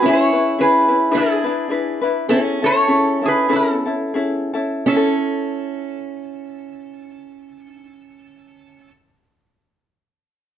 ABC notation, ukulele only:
X:1
M:4/4
L:1/8
Q:"Swing" 1/4=84
K:A
V:1 name="Ukulele"
[CEGB] [CEB] [CEGB] [CEB] [DEGB] [DEB] [DEGB] [DEB] | [CEGA] [CEA] [CEGA] [CEA] [CEGA] [CEA] [CEGA] [CEA] | [CEA]8- | [CEA]8 |]